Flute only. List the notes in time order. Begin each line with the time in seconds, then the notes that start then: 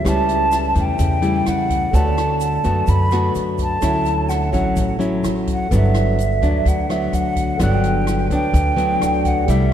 0.08 A5
0.79 G5
1.48 F#5
1.95 A5
2.40 A5
2.90 B5
3.62 A5
4.29 F#5
4.53 F#5
5.53 F#5
5.76 E5
6.68 F#5
6.92 E5
7.15 F#5
7.63 G5
8.34 G5
9.27 F#5
9.50 E5